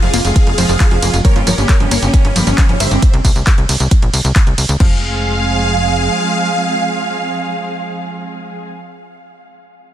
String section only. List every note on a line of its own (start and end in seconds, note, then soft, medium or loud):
0.02 0.18 C3 medium
0.02 0.18 F3 medium
0.02 0.18 G#3 medium
0.02 0.18 F4 loud
0.25 0.40 C3 medium
0.25 0.40 F3 medium
0.25 0.40 G#3 loud
0.25 0.40 F4 loud
0.58 0.74 C3 medium
0.58 0.73 F3 loud
0.58 0.74 G#3 loud
0.58 0.73 F4 loud
0.80 0.96 C3 medium
0.80 0.96 F3 medium
0.80 0.96 G#3 medium
0.80 0.96 F4 medium
1.02 1.18 C3 medium
1.02 1.18 F3 medium
1.02 1.18 G#3 medium
1.02 1.18 F4 medium
1.25 1.40 C#3 loud
1.25 1.40 G3 medium
1.25 1.40 A#3 medium
1.25 1.40 G4 medium
1.58 1.73 C#3 medium
1.58 1.73 G3 medium
1.58 1.73 A#3 medium
1.58 1.73 G4 medium
1.80 1.96 C#3 medium
1.80 1.96 G3 medium
1.80 1.96 A#3 medium
1.80 1.96 G4 medium
2.02 2.18 C#3 loud
2.02 2.18 G3 medium
2.02 2.18 A#3 loud
2.02 2.18 G4 medium
2.36 2.51 C#3 medium
2.36 2.51 G3 loud
2.36 2.51 A#3 loud
2.36 2.51 G4 loud
2.58 2.73 C#3 medium
2.58 2.73 G3 medium
2.58 2.73 A#3 loud
2.58 2.73 G4 medium
2.80 2.96 C#3 medium
2.80 2.96 G3 medium
2.80 2.96 A#3 medium
2.80 2.96 G4 medium
4.80 8.68 F3 medium
4.80 8.68 G#3 medium
4.80 8.68 C4 medium
4.80 8.68 G#4 medium